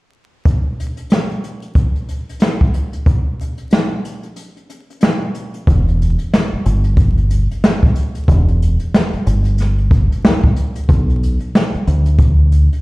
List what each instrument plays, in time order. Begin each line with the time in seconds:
0.45 kick, closed hi-hat
0.80 closed hi-hat
0.97 closed hi-hat
1.10 snare, closed hi-hat
1.31 closed hi-hat
1.44 closed hi-hat
1.62 closed hi-hat
1.75 kick, closed hi-hat
1.95 closed hi-hat
2.09 closed hi-hat
2.29 closed hi-hat
2.40 snare, closed hi-hat
2.61 kick
2.74 closed hi-hat
2.93 closed hi-hat
3.06 kick, closed hi-hat
3.41 closed hi-hat
3.58 closed hi-hat
3.71 snare, closed hi-hat
4.05 closed hi-hat
4.23 closed hi-hat
4.36 closed hi-hat
4.56 closed hi-hat
4.70 closed hi-hat
4.90 closed hi-hat
5.01 snare, closed hi-hat
5.35 closed hi-hat
5.54 closed hi-hat
5.67 fingered electric bass E1, kick, closed hi-hat
5.88 closed hi-hat
6.02 closed hi-hat
6.18 closed hi-hat
6.33 snare
6.53 muted fingered electric bass stroke
6.66 fingered electric bass G1, closed hi-hat
6.84 closed hi-hat
6.97 kick, closed hi-hat
7.17 closed hi-hat
7.30 closed hi-hat
7.51 closed hi-hat
7.64 snare
7.82 kick, closed hi-hat
7.95 closed hi-hat
8.15 closed hi-hat
8.28 fingered electric bass E1, kick, closed hi-hat
8.49 closed hi-hat
8.62 closed hi-hat
8.79 closed hi-hat
8.94 snare
9.13 muted fingered electric bass stroke, closed hi-hat
9.26 fingered electric bass G1, closed hi-hat
9.45 closed hi-hat
9.58 snare, closed hi-hat
9.78 closed hi-hat
9.91 kick, closed hi-hat
10.12 closed hi-hat
10.25 snare
10.43 kick, closed hi-hat
10.56 closed hi-hat
10.75 closed hi-hat
10.89 fingered electric bass B1, kick, closed hi-hat
11.10 closed hi-hat
11.23 closed hi-hat
11.40 closed hi-hat
11.55 snare
11.74 muted fingered electric bass stroke, closed hi-hat
11.87 fingered electric bass D2, closed hi-hat
12.05 closed hi-hat
12.19 kick, closed hi-hat
12.52 closed hi-hat
12.73 closed hi-hat